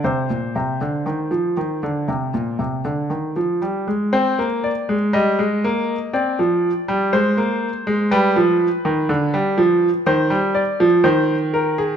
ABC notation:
X:1
M:4/4
L:1/16
Q:1/4=60
K:Cm
V:1 name="Grand piano"
c12- c2 z2 | c2 d2 e4 d4 c4 | =B8 c2 d2 c2 _B A |]
V:2 name="Grand piano" clef=bass
C, B,, C, D, E, F, E, D, C, B,, C, D, E, F, G, A, | C B,2 A, G, A, B,2 C F,2 G, A, B,2 A, | G, F,2 E, D, G, F,2 E, G,2 F, E,4 |]